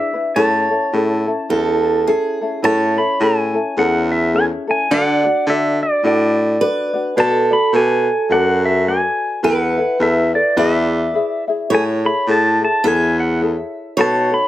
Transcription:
Already playing: ukulele D4 E4 G#4 B4, steel-string acoustic guitar D5, pedal steel guitar E5
0.13 ukulele D4 E4 B4
0.36 baritone saxophone A2, ukulele C#4 E4 G#4 A4, steel-string acoustic guitar C#5, pedal steel guitar A5
0.70 ukulele C#4 E4 A4
0.93 baritone saxophone A2, ukulele C#4 E4 G#4 A4
1.26 ukulele C#4 E4 A4
1.49 baritone saxophone E2, ukulele C#4 E4 A4, steel-string acoustic guitar A4
2.07 ukulele C#4 E4 G#4 A4, steel-string acoustic guitar G#4
2.41 ukulele C#4 E4 A4
2.63 baritone saxophone A2, ukulele C#4 E4 G#4 A4, steel-string acoustic guitar C#5, pedal steel guitar A5
2.98 ukulele C#4 E4 A4, pedal steel guitar B5
3.20 baritone saxophone A2, ukulele C#4 E4 G#4 A4, pedal steel guitar G#5
3.54 ukulele C#4 E4 A4
3.77 baritone saxophone E2, ukulele C#4 E4 G#4 A4, pedal steel guitar F#5
4.12 pedal steel guitar E5
4.33 ukulele C#4 E4 G#4 A4, pedal steel guitar G#5
4.67 ukulele C#4 E4 A4, pedal steel guitar G#5
4.90 baritone saxophone D3, ukulele D4 F#4 A4 D5, steel-string acoustic guitar D5, pedal steel guitar F#5
5.24 ukulele D4 F#4 D5
5.47 baritone saxophone D3, ukulele D4 F#4 A4 D5, pedal steel guitar E5
5.83 pedal steel guitar D5
6.03 baritone saxophone A2, ukulele D4 F#4 A4 D5, pedal steel guitar D5
6.61 ukulele D4 F#4 A4 D5, steel-string acoustic guitar B4
6.93 ukulele D4 F#4 D5
7.17 baritone saxophone B2, ukulele F#4 A4 B4 D5, steel-string acoustic guitar A4, pedal steel guitar A5
7.51 ukulele F#4 A4 D5, pedal steel guitar B5
7.73 baritone saxophone B2, ukulele F#4 A4 B4 D5, pedal steel guitar G#5
8.30 baritone saxophone F#2, ukulele F#4 A4 B4 D5, pedal steel guitar F#5
8.65 pedal steel guitar E5
8.87 ukulele F#4 A4 B4 D5, pedal steel guitar G#5
9.43 baritone saxophone E2, ukulele E4 A4 B4 E5, steel-string acoustic guitar B4, pedal steel guitar F#5
9.77 ukulele E4 A4 E5
10.00 baritone saxophone E2, ukulele E4 A4 B4 E5, pedal steel guitar E5
10.33 ukulele E4 A4 E5, pedal steel guitar D5
10.56 baritone saxophone E2, ukulele E4 G#4 B4 E5, steel-string acoustic guitar D5, pedal steel guitar E5
11.13 ukulele E4 G#4 B4 E5
11.48 ukulele E4 G#4 E5
11.70 baritone saxophone A2, ukulele E4 G#4 A4 C#5, steel-string acoustic guitar C#5
11.74 pedal steel guitar G#5
12.04 ukulele E4 G#4 A4, pedal steel guitar B5
12.27 baritone saxophone A2, ukulele E4 G#4 A4 C#5, pedal steel guitar A5
12.61 ukulele E4 G#4 A4, pedal steel guitar A5
12.84 baritone saxophone E2, ukulele E4 G#4 A4 C#5, steel-string acoustic guitar E5, pedal steel guitar G#5
13.20 pedal steel guitar F#5
13.41 ukulele E4 G#4 A4 C#5
13.97 baritone saxophone B2, ukulele D#4 F#4 A4 B4, steel-string acoustic guitar C#5, pedal steel guitar A5
14.31 ukulele D#4 F#4 A4, pedal steel guitar B5

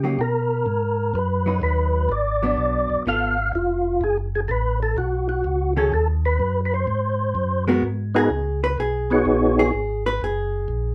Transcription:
Already playing: tonewheel organ C#3 G4
0.04 hollow-body jazz guitar F#3 A#3 D#4
0.19 tonewheel organ B2 A#4
0.66 tonewheel organ G#2
1.14 tonewheel organ F#2 B4
1.46 hollow-body jazz guitar F#3 D#4
1.62 tonewheel organ D#2 B4
2.09 tonewheel organ G#1 D5
2.43 hollow-body jazz guitar F#3 B3 D4
2.57 tonewheel organ B1
2.90 tonewheel organ B1
3.06 tonewheel organ G#1 F5, hollow-body jazz guitar B3 F4 A4
3.53 tonewheel organ F1 F4
4.01 tonewheel organ F#1 G#4
4.35 tonewheel organ G#4
4.48 tonewheel organ A1 A4 B4
4.83 tonewheel organ A4
4.97 tonewheel organ B1 F#4
5.29 tonewheel organ F#4
5.44 tonewheel organ C#2
5.77 hollow-body jazz guitar D#3 C#4 F#4 A4, tonewheel organ G#4
5.92 tonewheel organ D#2 A4
6.26 tonewheel organ B4
6.39 tonewheel organ F#2
6.65 tonewheel organ B4
6.74 tonewheel organ C5
6.87 tonewheel organ G#2
7.35 tonewheel organ F#2
7.68 hollow-body jazz guitar G#3 B3 F#4 A#4
7.83 tonewheel organ G#2
8.15 tonewheel organ B3 D#4 F#4 G#4 A#4, hollow-body jazz guitar G#4
8.30 tonewheel organ C#2
8.64 hollow-body jazz guitar B4
8.78 tonewheel organ B1, hollow-body jazz guitar G#4
9.10 tonewheel organ B3 D#4 F#4 G#4 C#5
9.25 tonewheel organ A#1
9.59 hollow-body jazz guitar G#4
9.73 tonewheel organ G#1
10.06 hollow-body jazz guitar B4
10.21 tonewheel organ F#1, hollow-body jazz guitar G#4
10.68 tonewheel organ A#1

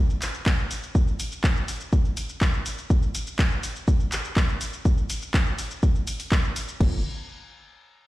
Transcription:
0.10 shaker
0.22 clap, open hi-hat, shaker
0.34 shaker
0.46 kick, clap, shaker
0.59 shaker
0.71 open hi-hat, shaker
0.83 shaker
0.95 kick, shaker
1.08 shaker
1.20 open hi-hat, shaker
1.32 shaker
1.44 kick, clap, shaker
1.56 shaker
1.68 open hi-hat, shaker
1.81 shaker
1.93 kick, shaker
2.05 shaker
2.17 open hi-hat, shaker
2.29 shaker
2.41 kick, clap, shaker
2.54 shaker
2.66 open hi-hat, shaker
2.78 shaker
2.90 kick, shaker
3.03 shaker
3.15 open hi-hat, shaker
3.27 shaker
3.39 kick, clap, shaker
3.51 shaker
3.63 open hi-hat, shaker
3.76 shaker
3.88 kick, shaker
4.00 shaker
4.12 clap, open hi-hat, shaker
4.25 shaker
4.37 kick, clap, shaker
4.49 shaker
4.61 open hi-hat, shaker
4.73 shaker
4.85 kick, shaker
4.98 shaker
5.10 open hi-hat, shaker
5.22 shaker
5.34 kick, clap, shaker
5.47 shaker
5.59 open hi-hat, shaker
5.71 shaker
5.83 kick, shaker
5.95 shaker
6.07 open hi-hat, shaker
6.20 open hi-hat, shaker
6.32 kick, clap, shaker
6.44 shaker
6.56 open hi-hat, shaker
6.69 shaker
6.80 analog synth bass G1, kick, crash

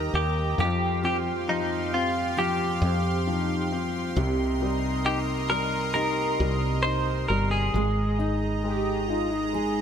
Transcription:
Already playing: steel-string acoustic guitar D#3 C4 G4, upright piano D#3 A#3, analog synth pad G4 D#5 A#5, clean electric guitar A#4
0.13 fretless electric bass D#2, upright piano A#3, clean electric guitar G4
0.58 fretless electric bass F2, steel-string acoustic guitar F2 G4, upright piano F3, clean electric guitar G4, analog synth pad F5 C6
1.03 upright piano C4, steel-string acoustic guitar F4, clean electric guitar G4
1.48 upright piano F3, clean electric guitar D#4
1.93 upright piano C4, clean electric guitar F4
2.37 upright piano F3, steel-string acoustic guitar G4, clean electric guitar G4
2.82 fretless electric bass F2, upright piano C4
3.27 upright piano F3, french horn section D#4
3.72 upright piano C4, french horn section F4
4.16 fretless electric bass C2, steel-string acoustic guitar C3 G4, upright piano C3, french horn section G4, analog synth pad A#4 D#5
4.60 upright piano G3, steel-string acoustic guitar D#4
5.05 upright piano D#4, clean electric guitar G4
5.50 upright piano G3, clean electric guitar A#4
5.94 upright piano D#4, steel-string acoustic guitar G4, clean electric guitar A#4
6.40 fretless electric bass C2, upright piano G3
6.83 upright piano D#4, clean electric guitar C5
7.28 fretless electric bass G1, upright piano G3, clean electric guitar A#4
7.51 clean electric guitar G#4
7.74 fretless electric bass G#1, upright piano G#3, steel-string acoustic guitar G#3, analog synth pad G#3 D#5 A#5
8.19 upright piano D#4, steel-string acoustic guitar D#4
8.64 upright piano G#3, french horn section G4
9.08 upright piano D#4, french horn section F4
9.31 french horn section D#4
9.53 upright piano G#3, steel-string acoustic guitar G#4

